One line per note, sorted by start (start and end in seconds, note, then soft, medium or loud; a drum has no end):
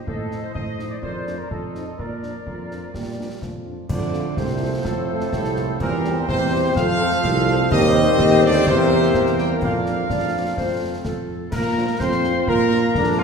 0.07 0.47 A2 medium
0.07 0.41 A4 medium
0.07 0.52 C5 medium
0.07 0.52 D#5 medium
0.07 concert bass drum medium
0.30 0.39 F3 medium
0.30 0.39 C4 medium
0.30 0.40 D#4 medium
0.30 snare soft
0.43 0.54 C5 medium
0.54 0.95 A2 medium
0.54 1.00 C5 medium
0.54 0.88 D#5 medium
0.54 1.00 D#5 medium
0.54 concert bass drum medium
0.79 0.87 F3 soft
0.79 0.87 C4 soft
0.79 0.87 D#4 medium
0.79 snare soft
0.90 0.96 D5 medium
1.02 1.42 F2 medium
1.02 1.51 A#4 medium
1.02 1.36 C5 medium
1.02 1.51 D5 medium
1.02 concert bass drum medium
1.27 1.36 F3 medium
1.27 1.35 A#3 medium
1.27 1.35 D4 medium
1.27 snare soft
1.38 1.50 A#4 medium
1.51 1.91 F2 medium
1.51 1.98 F4 medium
1.51 1.84 A4 medium
1.51 1.99 D#5 medium
1.51 concert bass drum medium
1.74 1.83 F3 soft
1.74 1.83 C4 soft
1.74 1.83 D#4 soft
1.74 snare soft
1.87 1.92 A4 medium
1.98 2.38 A#2 medium
1.98 3.62 F4 medium
1.98 3.62 A#4 medium
1.98 3.62 D5 medium
1.98 concert bass drum medium
2.23 2.31 F3 soft
2.23 2.31 A#3 soft
2.23 2.32 D4 soft
2.23 snare soft
2.46 2.86 F2 medium
2.46 2.91 F3 medium
2.46 concert bass drum medium
2.70 2.79 F3 soft
2.70 2.79 A#3 soft
2.70 2.79 D4 soft
2.70 snare soft
2.93 3.34 A#2 soft
2.93 3.38 G3 medium
2.93 concert bass drum medium
2.93 snare medium
3.18 3.27 F3 soft
3.18 3.27 A#3 soft
3.18 3.27 D4 soft
3.42 3.82 F2 medium
3.42 3.87 F3 medium
3.42 concert bass drum medium
3.42 snare soft
3.66 3.74 F3 soft
3.66 3.74 A#3 soft
3.66 3.74 D4 soft
3.89 4.29 F2 medium
3.89 4.34 D3 medium
3.89 5.77 F3 medium
3.89 5.77 A3 medium
3.89 5.77 A4 medium
3.89 5.77 C5 medium
3.89 4.34 D5 medium
3.89 concert bass drum medium
3.89 crash medium
4.13 4.22 A3 medium
4.13 4.22 C4 medium
4.13 4.22 F4 medium
4.13 snare medium
4.37 4.77 C2 medium
4.37 4.87 C3 medium
4.37 4.85 C5 medium
4.37 concert bass drum medium
4.37 snare medium
4.61 4.70 A3 medium
4.61 4.70 C4 medium
4.61 4.70 F4 medium
4.85 5.25 F2 medium
4.85 5.32 A2 medium
4.85 5.32 A4 loud
4.85 concert bass drum medium
4.85 snare medium
5.09 5.18 A3 medium
5.09 5.18 C4 medium
5.09 5.18 F4 medium
5.20 snare medium
5.33 5.73 C2 medium
5.33 5.77 A2 medium
5.33 5.78 A4 medium
5.33 concert bass drum medium
5.33 snare medium
5.44 snare medium
5.56 5.66 A3 medium
5.56 5.66 C4 medium
5.56 5.66 F4 medium
5.56 snare medium
5.80 6.21 E2 medium
5.80 6.25 A#2 loud
5.80 6.72 G3 medium
5.80 7.67 C4 medium
5.80 6.72 G4 medium
5.80 6.26 A#4 loud
5.80 7.68 C5 loud
5.80 concert bass drum medium
5.80 crash soft
6.04 6.14 G3 medium
6.04 6.14 C4 medium
6.04 6.14 G4 medium
6.04 snare medium
6.28 6.68 E2 loud
6.28 6.78 C3 loud
6.28 6.73 C5 loud
6.28 concert bass drum medium
6.28 snare medium
6.52 6.61 G3 medium
6.52 6.61 C4 medium
6.52 6.61 G4 medium
6.76 7.16 F2 loud
6.76 7.75 F3 loud
6.76 7.72 A3 medium
6.76 7.72 A4 loud
6.76 7.68 F5 loud
6.76 concert bass drum medium
6.76 snare medium
7.00 7.08 F3 medium
7.00 7.08 C4 medium
7.00 7.09 A4 loud
7.12 snare medium
7.24 7.64 C2 loud
7.24 concert bass drum medium
7.24 snare medium
7.36 snare medium
7.47 7.57 F3 medium
7.47 7.57 C4 medium
7.47 7.57 A4 medium
7.47 snare medium
7.71 8.07 D#2 loud
7.71 8.46 D#3 loud
7.71 8.16 G3 loud
7.71 8.63 G3 medium
7.71 8.63 C4 loud
7.71 9.58 C4 loud
7.71 8.63 G4 loud
7.71 9.59 C5 loud
7.71 8.39 D#5 loud
7.71 concert bass drum loud
7.71 crash soft
7.95 snare medium
8.19 8.61 D#2 loud
8.19 8.67 A3 loud
8.19 concert bass drum medium
8.19 snare medium
8.44 8.67 D3 loud
8.44 8.67 D5 loud
8.67 9.10 E2 loud
8.67 9.35 C3 loud
8.67 10.57 A#3 medium
8.67 9.58 A#3 loud
8.67 9.59 C4 loud
8.67 9.58 G4 loud
8.67 10.05 A#4 loud
8.67 9.39 C5 loud
8.67 concert bass drum medium
8.67 snare medium
9.03 snare medium
9.14 9.57 E2 medium
9.14 concert bass drum medium
9.14 snare medium
9.26 snare medium
9.38 9.65 G3 medium
9.38 9.49 G5 loud
9.38 snare medium
9.62 10.05 F2 medium
9.62 11.30 F3 medium
9.62 10.54 A#3 medium
9.62 10.53 D4 medium
9.62 10.54 D4 medium
9.62 10.54 F4 medium
9.62 10.06 D5 medium
9.62 11.25 F5 loud
9.62 concert bass drum medium
9.62 crash soft
9.86 snare medium
10.10 10.52 F2 medium
10.10 10.54 D5 medium
10.10 concert bass drum medium
10.10 snare medium
10.57 11.00 F2 medium
10.57 11.25 A3 medium
10.57 11.29 A3 medium
10.57 11.25 C4 medium
10.57 11.25 C4 soft
10.57 11.25 F4 medium
10.57 10.93 C5 medium
10.57 concert bass drum medium
10.57 snare medium
11.05 11.47 F2 medium
11.05 11.50 A4 medium
11.05 concert bass drum medium
11.05 snare medium
11.52 11.92 A#2 medium
11.52 11.97 A#3 medium
11.52 11.97 A#4 loud
11.52 11.96 A#5 loud
11.52 concert bass drum medium
11.52 snare medium
11.52 crash medium
11.76 11.85 F3 medium
11.76 11.85 D4 medium
11.76 11.85 F4 medium
12.00 12.40 F2 medium
12.00 12.50 C4 loud
12.00 12.91 F4 medium
12.00 12.48 C5 loud
12.00 12.50 C6 loud
12.00 concert bass drum medium
12.00 snare medium
12.12 snare medium
12.24 12.33 F3 medium
12.24 12.33 D4 medium
12.24 12.33 F4 medium
12.24 snare medium
12.47 12.87 A#2 loud
12.47 13.21 A#3 loud
12.47 13.15 A#4 loud
12.47 13.21 A#5 loud
12.47 concert bass drum loud
12.71 12.81 F3 medium
12.71 12.81 D4 medium
12.71 12.81 F4 medium
12.71 snare medium
12.95 13.23 F2 loud
12.95 13.23 D4 medium
12.95 concert bass drum medium
12.95 snare medium
13.18 13.23 F3 medium
13.18 13.23 D4 medium
13.18 13.23 F4 loud
13.18 13.23 F4 medium
13.18 13.23 F5 medium